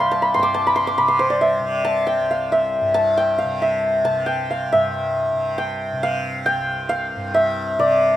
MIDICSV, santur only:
0, 0, Header, 1, 2, 480
1, 0, Start_track
1, 0, Tempo, 442152
1, 1278, Time_signature, 4, 2, 24, 8
1, 8866, End_track
2, 0, Start_track
2, 0, Title_t, "Santur"
2, 0, Program_c, 0, 15
2, 0, Note_on_c, 0, 74, 71
2, 0, Note_on_c, 0, 77, 83
2, 0, Note_on_c, 0, 79, 75
2, 0, Note_on_c, 0, 81, 76
2, 0, Note_on_c, 0, 84, 80
2, 120, Note_off_c, 0, 81, 0
2, 124, Note_on_c, 0, 81, 85
2, 239, Note_on_c, 0, 83, 78
2, 304, Note_off_c, 0, 84, 0
2, 373, Note_on_c, 0, 84, 89
2, 425, Note_on_c, 0, 88, 64
2, 438, Note_off_c, 0, 83, 0
2, 464, Note_on_c, 0, 86, 88
2, 491, Note_off_c, 0, 77, 0
2, 586, Note_off_c, 0, 81, 0
2, 590, Note_on_c, 0, 81, 89
2, 724, Note_on_c, 0, 83, 88
2, 790, Note_off_c, 0, 84, 0
2, 822, Note_on_c, 0, 84, 88
2, 887, Note_off_c, 0, 83, 0
2, 941, Note_off_c, 0, 86, 0
2, 946, Note_on_c, 0, 86, 88
2, 1062, Note_on_c, 0, 83, 81
2, 1127, Note_off_c, 0, 84, 0
2, 1174, Note_on_c, 0, 84, 74
2, 1240, Note_off_c, 0, 83, 0
2, 1294, Note_on_c, 0, 72, 83
2, 1406, Note_off_c, 0, 74, 0
2, 1411, Note_on_c, 0, 74, 70
2, 1532, Note_on_c, 0, 76, 76
2, 1986, Note_off_c, 0, 79, 0
2, 1999, Note_off_c, 0, 81, 0
2, 2004, Note_on_c, 0, 81, 97
2, 2079, Note_off_c, 0, 88, 0
2, 2244, Note_on_c, 0, 79, 83
2, 2504, Note_on_c, 0, 77, 70
2, 2569, Note_off_c, 0, 76, 0
2, 2707, Note_off_c, 0, 86, 0
2, 2736, Note_on_c, 0, 76, 71
2, 2801, Note_off_c, 0, 77, 0
2, 3065, Note_off_c, 0, 84, 0
2, 3191, Note_off_c, 0, 81, 0
2, 3195, Note_on_c, 0, 81, 95
2, 3442, Note_off_c, 0, 79, 0
2, 3446, Note_on_c, 0, 79, 86
2, 3672, Note_on_c, 0, 77, 66
2, 3738, Note_off_c, 0, 76, 0
2, 3928, Note_on_c, 0, 76, 61
2, 3993, Note_off_c, 0, 77, 0
2, 4080, Note_off_c, 0, 74, 0
2, 4159, Note_off_c, 0, 72, 0
2, 4390, Note_off_c, 0, 81, 0
2, 4395, Note_on_c, 0, 81, 90
2, 4622, Note_off_c, 0, 79, 0
2, 4627, Note_on_c, 0, 79, 85
2, 4890, Note_on_c, 0, 77, 67
2, 4955, Note_off_c, 0, 76, 0
2, 5129, Note_on_c, 0, 76, 79
2, 5194, Note_off_c, 0, 77, 0
2, 6053, Note_off_c, 0, 79, 0
2, 6057, Note_on_c, 0, 79, 88
2, 6504, Note_off_c, 0, 81, 0
2, 6547, Note_on_c, 0, 77, 91
2, 6612, Note_off_c, 0, 76, 0
2, 7007, Note_off_c, 0, 79, 0
2, 7011, Note_on_c, 0, 79, 108
2, 7477, Note_off_c, 0, 77, 0
2, 7482, Note_on_c, 0, 77, 90
2, 7973, Note_on_c, 0, 76, 83
2, 8038, Note_off_c, 0, 77, 0
2, 8461, Note_on_c, 0, 74, 82
2, 8866, Note_off_c, 0, 74, 0
2, 8866, Note_off_c, 0, 76, 0
2, 8866, Note_off_c, 0, 79, 0
2, 8866, End_track
0, 0, End_of_file